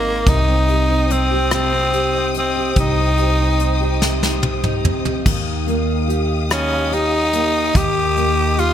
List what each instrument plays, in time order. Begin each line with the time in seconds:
Already playing: upright bass G#1, steel-string acoustic guitar G#3 C4 D#4, tenor saxophone A#3, string section A#4 A#5 C6
0.07 steel-string acoustic guitar A#4
0.26 upright bass C2, steel-string acoustic guitar C3, tenor saxophone D#4, string section C5 G5 D#6, kick, closed hi-hat
0.48 steel-string acoustic guitar C4
0.68 steel-string acoustic guitar G4, closed hi-hat
0.90 steel-string acoustic guitar D#4
1.10 steel-string acoustic guitar C4, tenor saxophone C4, closed hi-hat
1.31 steel-string acoustic guitar G4
1.51 steel-string acoustic guitar C3, tenor saxophone C4, cross-stick, closed hi-hat
1.72 steel-string acoustic guitar C4
1.93 steel-string acoustic guitar G4, closed hi-hat
2.14 steel-string acoustic guitar D#4
2.34 steel-string acoustic guitar C4, closed hi-hat
2.38 tenor saxophone C4
2.55 steel-string acoustic guitar G4
2.76 upright bass C2, steel-string acoustic guitar C3, kick, closed hi-hat
2.80 tenor saxophone D#4
2.97 steel-string acoustic guitar C4
3.18 steel-string acoustic guitar G4, closed hi-hat
3.38 steel-string acoustic guitar D#4
3.59 steel-string acoustic guitar C4, closed hi-hat
3.80 steel-string acoustic guitar G4
4.01 steel-string acoustic guitar C3, snare
4.22 steel-string acoustic guitar C4, snare
4.42 steel-string acoustic guitar G4, high tom
4.63 steel-string acoustic guitar D#4, mid tom
4.84 steel-string acoustic guitar C4, mid tom
5.05 steel-string acoustic guitar G4, floor tom
5.26 upright bass D#2, steel-string acoustic guitar D#3, string section G4 F5 D#6, kick, crash
5.66 steel-string acoustic guitar A#3, closed hi-hat
6.08 steel-string acoustic guitar G4, closed hi-hat
6.49 tenor saxophone C#4, steel-string acoustic guitar D#4, cross-stick, closed hi-hat
6.91 tenor saxophone D#4, steel-string acoustic guitar G4, closed hi-hat
7.33 steel-string acoustic guitar A#3, closed hi-hat
7.73 upright bass D#2, steel-string acoustic guitar D#3, tenor saxophone G4, string section D#5, kick, closed hi-hat
8.16 steel-string acoustic guitar A#3, closed hi-hat
8.57 tenor saxophone F4, steel-string acoustic guitar G4, closed hi-hat